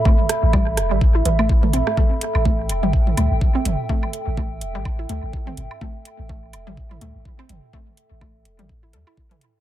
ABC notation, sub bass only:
X:1
M:4/4
L:1/16
Q:"Swing 16ths" 1/4=125
K:C
V:1 name="Sub bass" clef=bass
z3 A,,,3 E,,, A,,,3 A,,,4- A,,, z | z3 A,,,3 E,,, A,,,3 D,, A,,, z2 G,,, z | z3 A,,,3 E,,, A,,,3 D,, A,,, z2 G,,, z | z3 A,,,3 E,,, A,,,3 D,, A,,, z2 G,,, z |
z3 A,,,3 E,,, A,,,3 E,, z4 z |]